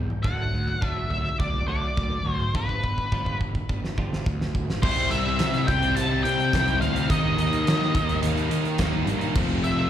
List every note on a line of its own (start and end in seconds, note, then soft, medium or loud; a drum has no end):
0.00 0.22 C3 medium
0.00 0.22 G3 medium
0.10 mid tom medium
0.23 0.43 D2 medium
0.23 0.52 D3 medium
0.23 0.52 F#3 medium
0.23 0.52 A3 medium
0.23 0.88 F#5 medium
0.23 kick loud
0.23 floor tom medium
0.53 0.72 D2 medium
0.53 0.80 D3 medium
0.53 0.80 F#3 medium
0.68 floor tom medium
0.81 1.01 D2 medium
0.81 1.09 D3 medium
0.81 1.09 F#3 medium
0.81 1.09 A3 medium
0.81 kick medium
0.88 1.10 E5 medium
1.10 1.29 D2 medium
1.10 1.37 D3 medium
1.10 1.37 F#3 medium
1.10 1.39 E5 medium
1.10 floor tom medium
1.39 1.58 D2 medium
1.39 1.65 D3 medium
1.39 1.66 F#3 medium
1.39 1.67 D5 medium
1.39 kick medium
1.54 floor tom medium
1.67 1.86 D2 medium
1.67 1.96 D3 medium
1.67 1.96 F#3 medium
1.67 1.96 A3 medium
1.67 2.32 D5 medium
1.97 2.15 D2 medium
1.97 2.24 D3 medium
1.97 2.24 F#3 medium
1.97 kick medium
1.97 floor tom medium
2.24 2.43 D2 medium
2.24 2.52 D3 medium
2.24 2.52 F#3 medium
2.24 mid tom medium
2.32 2.57 C5 medium
2.40 mid tom medium
2.55 2.73 G1 medium
2.55 2.82 G2 medium
2.55 2.82 D3 medium
2.55 2.82 F3 medium
2.55 3.37 B4 medium
2.55 kick medium
2.69 kick soft
2.83 3.02 G1 medium
2.83 3.09 G2 medium
2.83 3.09 D3 medium
2.83 kick soft
2.98 kick soft
3.12 3.30 G1 medium
3.12 3.39 G2 medium
3.12 3.39 D3 medium
3.12 3.39 F3 medium
3.12 kick medium
3.26 kick soft
3.40 3.58 G1 medium
3.40 3.67 G2 medium
3.40 3.67 D3 medium
3.40 kick medium
3.55 kick medium
3.69 3.87 G1 medium
3.69 3.95 G2 medium
3.69 3.95 D3 medium
3.69 kick medium
3.85 snare medium
3.97 4.16 G1 medium
3.97 4.25 G2 medium
3.97 4.25 D3 medium
3.97 4.25 F3 medium
3.97 kick medium
4.13 snare medium
4.26 4.63 D2 medium
4.26 4.51 G2 medium
4.26 4.52 D3 medium
4.26 kick medium
4.41 snare medium
4.55 4.80 G2 medium
4.55 4.80 D3 medium
4.55 kick medium
4.70 snare medium
4.82 5.08 C2 loud
4.82 5.37 C3 loud
4.82 5.27 G3 loud
4.82 5.26 C4 loud
4.82 5.24 E4 loud
4.82 5.12 C5 medium
4.82 kick loud
4.82 crash loud
5.11 5.37 C2 loud
5.11 5.69 E5 loud
5.11 closed hi-hat medium
5.26 5.39 G3 medium
5.26 5.39 C4 medium
5.26 5.39 E4 medium
5.39 5.67 C3 loud
5.39 5.66 C3 medium
5.39 5.68 G3 loud
5.39 5.67 C4 loud
5.39 5.67 E4 loud
5.39 snare loud
5.39 closed hi-hat loud
5.54 snare soft
5.54 closed hi-hat soft
5.67 5.93 C2 medium
5.67 5.94 C3 medium
5.67 5.82 G3 medium
5.67 5.82 C4 medium
5.67 5.81 E4 medium
5.67 5.95 G5 loud
5.67 muted distorted electric guitar stroke soft
5.67 kick medium
5.67 closed hi-hat medium
5.82 6.11 G3 medium
5.82 6.11 C4 medium
5.82 6.10 E4 medium
5.82 muted distorted electric guitar stroke medium
5.82 closed hi-hat soft
5.95 6.22 C2 medium
5.95 6.23 C3 medium
5.95 6.12 G3 medium
5.95 6.11 C4 medium
5.95 6.09 E4 medium
5.95 6.22 A5 loud
5.95 closed hi-hat loud
6.11 6.25 G3 medium
6.11 6.26 C4 medium
6.11 6.27 E4 medium
6.24 6.50 C3 medium
6.24 6.53 C3 medium
6.24 6.40 G3 medium
6.24 6.40 C4 medium
6.24 6.77 G5 loud
6.24 closed hi-hat medium
6.28 6.39 E4 medium
6.40 muted distorted electric guitar stroke soft
6.40 closed hi-hat soft
6.53 6.78 C2 medium
6.53 6.81 C3 medium
6.53 6.82 G3 loud
6.53 6.83 C4 medium
6.53 6.84 E4 loud
6.53 kick medium
6.53 snare loud
6.53 closed hi-hat loud
6.68 closed hi-hat soft
6.81 7.07 D2 medium
6.81 7.08 C3 medium
6.81 6.96 G3 medium
6.81 6.95 C4 medium
6.81 6.95 E4 medium
6.81 7.10 F5 loud
6.81 closed hi-hat medium
6.96 7.08 G3 medium
6.96 7.08 C4 medium
6.96 7.08 E4 medium
6.96 closed hi-hat medium
7.09 7.35 D#2 loud
7.09 7.63 D#3 loud
7.09 7.52 G3 loud
7.09 7.51 A#3 loud
7.09 7.50 D#4 loud
7.09 8.19 D#5 medium
7.09 kick loud
7.09 closed hi-hat loud
7.38 7.63 D#2 loud
7.38 closed hi-hat medium
7.51 7.65 G3 medium
7.51 7.65 A#3 medium
7.51 7.65 D#4 medium
7.51 closed hi-hat soft
7.64 7.93 D#3 loud
7.64 7.91 D#3 medium
7.64 7.94 G3 loud
7.64 7.94 A#3 loud
7.64 7.95 D#4 loud
7.64 snare loud
7.64 closed hi-hat loud
7.82 snare soft
7.93 8.20 D#2 loud
7.93 8.21 D#3 medium
7.93 8.08 G3 medium
7.93 8.08 A#3 medium
7.93 8.08 D#4 medium
7.93 muted distorted electric guitar stroke soft
7.93 kick medium
7.93 closed hi-hat medium
8.09 8.37 G3 medium
8.09 8.36 A#3 medium
8.09 8.35 D#4 medium
8.09 muted distorted electric guitar stroke medium
8.09 closed hi-hat medium
8.22 8.47 D#2 loud
8.22 8.49 D#3 medium
8.22 8.38 G3 medium
8.22 8.37 A#3 medium
8.22 8.35 D#4 medium
8.22 closed hi-hat loud
8.36 8.49 G3 medium
8.36 8.50 A#3 medium
8.36 8.51 D#4 medium
8.36 closed hi-hat soft
8.49 8.77 D#3 medium
8.49 8.75 D#3 medium
8.49 8.66 G3 medium
8.49 8.65 A#3 medium
8.49 8.64 D#4 medium
8.49 closed hi-hat medium
8.65 muted distorted electric guitar stroke medium
8.65 closed hi-hat soft
8.78 9.04 D#2 medium
8.78 9.06 D#3 medium
8.78 9.07 G3 loud
8.78 9.07 A#3 loud
8.78 9.08 D#4 loud
8.78 kick medium
8.78 snare loud
8.78 closed hi-hat loud
9.06 9.32 G2 loud
9.06 9.34 D#3 medium
9.06 9.22 G3 medium
9.06 9.22 A#3 medium
9.06 9.20 D#4 medium
9.06 closed hi-hat medium
9.21 9.35 G3 medium
9.21 9.35 A#3 medium
9.21 9.34 D#4 medium
9.21 closed hi-hat soft
9.35 9.61 F1 loud
9.35 9.90 F2 loud
9.35 9.90 C3 loud
9.35 9.79 F3 loud
9.35 9.78 A3 loud
9.35 9.77 C4 loud
9.35 kick loud
9.35 crash loud
9.64 9.89 F1 medium
9.64 9.90 E5 medium
9.64 closed hi-hat medium
9.78 9.90 F3 medium
9.78 9.90 A3 medium
9.78 9.90 C4 medium